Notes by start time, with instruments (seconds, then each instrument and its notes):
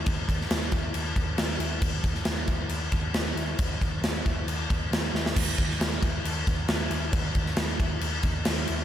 0.06 picked electric bass D#2, kick, crash
0.28 picked electric bass D#2, kick, crash
0.41 snare
0.50 picked electric bass D#2, snare, crash
0.72 picked electric bass D#2, kick, crash
0.94 picked electric bass D#2, crash
1.16 picked electric bass D#2, kick, crash
1.38 picked electric bass D#2, snare, crash
1.59 picked electric bass D#2, crash
1.81 picked electric bass D#2, kick, crash
2.03 picked electric bass D#2, kick, crash
2.15 snare
2.25 picked electric bass D#2, snare, crash
2.47 picked electric bass D#2, kick, crash
2.69 picked electric bass D#2, crash
2.92 picked electric bass D#2, kick, crash
3.14 picked electric bass D#2, snare, crash
3.35 picked electric bass D#2, crash
3.58 picked electric bass D#2, kick, crash
3.81 picked electric bass D#2, kick, crash
4.01 picked electric bass D#2, snare, crash
4.25 picked electric bass D#2, kick, crash
4.46 picked electric bass D#2, crash
4.70 picked electric bass D#2, kick, crash
4.91 picked electric bass D#2, snare, crash
5.13 picked electric bass D#2, snare
5.26 snare
5.36 picked electric bass D#2, kick, crash
5.58 picked electric bass D#2, kick, crash
5.71 snare
5.79 picked electric bass D#2, snare, crash
6.02 picked electric bass D#2, kick, crash
6.24 picked electric bass D#2, crash
6.47 picked electric bass D#2, kick, crash
6.68 picked electric bass D#2, snare, crash
6.90 picked electric bass D#2, crash
7.12 picked electric bass D#2, kick, crash
7.35 picked electric bass D#2, kick, crash
7.46 snare
7.56 picked electric bass D#2, snare, crash
7.79 picked electric bass D#2, kick, crash
8.01 picked electric bass D#2, crash
8.23 picked electric bass D#2, kick, crash
8.45 picked electric bass D#2, snare, crash
8.67 picked electric bass D#2, crash